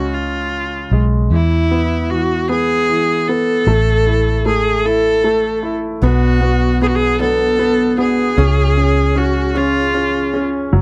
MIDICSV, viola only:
0, 0, Header, 1, 2, 480
1, 0, Start_track
1, 0, Tempo, 785238
1, 801, Time_signature, 6, 3, 24, 8
1, 6612, End_track
2, 0, Start_track
2, 0, Title_t, "Viola"
2, 0, Program_c, 0, 41
2, 0, Note_on_c, 0, 66, 77
2, 82, Note_on_c, 0, 65, 71
2, 91, Note_off_c, 0, 66, 0
2, 621, Note_off_c, 0, 65, 0
2, 806, Note_on_c, 0, 64, 89
2, 1284, Note_on_c, 0, 66, 87
2, 1293, Note_off_c, 0, 64, 0
2, 1523, Note_off_c, 0, 66, 0
2, 1528, Note_on_c, 0, 68, 101
2, 2001, Note_on_c, 0, 69, 101
2, 2010, Note_off_c, 0, 68, 0
2, 2721, Note_off_c, 0, 69, 0
2, 2731, Note_on_c, 0, 68, 91
2, 2965, Note_on_c, 0, 69, 101
2, 2974, Note_off_c, 0, 68, 0
2, 3503, Note_off_c, 0, 69, 0
2, 3689, Note_on_c, 0, 66, 92
2, 4141, Note_off_c, 0, 66, 0
2, 4173, Note_on_c, 0, 68, 94
2, 4206, Note_on_c, 0, 66, 71
2, 4215, Note_off_c, 0, 68, 0
2, 4251, Note_on_c, 0, 68, 93
2, 4260, Note_off_c, 0, 66, 0
2, 4401, Note_off_c, 0, 68, 0
2, 4405, Note_on_c, 0, 69, 105
2, 4859, Note_off_c, 0, 69, 0
2, 4883, Note_on_c, 0, 68, 96
2, 5608, Note_on_c, 0, 66, 78
2, 5617, Note_off_c, 0, 68, 0
2, 5854, Note_on_c, 0, 65, 90
2, 5863, Note_off_c, 0, 66, 0
2, 6388, Note_off_c, 0, 65, 0
2, 6612, End_track
0, 0, End_of_file